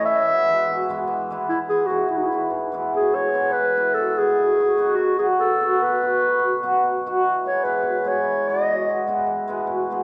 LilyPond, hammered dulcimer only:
\new Staff \with { instrumentName = "Hammered dulcimer" } { \time 7/8 \key e \major \tempo 4 = 146 << { r8 <e gis b e'>8 <e gis b e'>8 r8 <e gis b e'>8 r8 <e gis b e'>8 | r8 <e gis b e'>8 <e gis b e'>8 r8 <e gis b e'>8 r8 <e gis b e'>8 | r8 <e gis b e'>8 <e gis b e'>8 r8 <e gis b e'>8 r8 <e gis b e'>8 | r8 <fis b dis' fis'>8 <fis b dis' fis'>8 r8 <fis b dis' fis'>8 r8 <fis b dis' fis'>8 |
r8 <fis b dis' fis'>8 <fis b dis' fis'>8 r8 <fis b dis' fis'>8 r8 <fis b dis' fis'>8 | r8 <gis b e' gis'>8 <gis b e' gis'>8 r8 <gis b e' gis'>8 r8 <gis b e' gis'>8 | r8 <gis b e' gis'>8 <gis b e' gis'>8 r8 <gis b e' gis'>8 r8 <gis b e' gis'>8 | } \\ { e4 r8 b,4 e4 | e4 r8 b,4 e4 | b,4 r8 e4 b,4 | b,4 r8 b,4 b,4 |
b,4 r8 b,4 b,4 | e4 r8 b,4 e4 | b,4 r8 e4 b,4 | } >> }